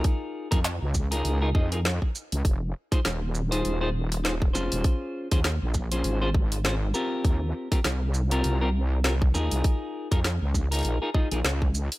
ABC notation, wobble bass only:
X:1
M:4/4
L:1/16
Q:"Swing 16ths" 1/4=100
K:Dblyd
V:1 name="Wobble bass" clef=bass
z3 F,,2 D,,3 D,,2 F,,3 z2 D,, | F,,,2 z2 E,,,4 E,,,6 F,,, E,,, | z3 E,,2 B,,,3 A,,,6 z2 | E,,2 z2 C,,4 C,,6 E,, C,, |
z3 F,,2 D,,3 B,,, z2 B,,, D,,3 z |]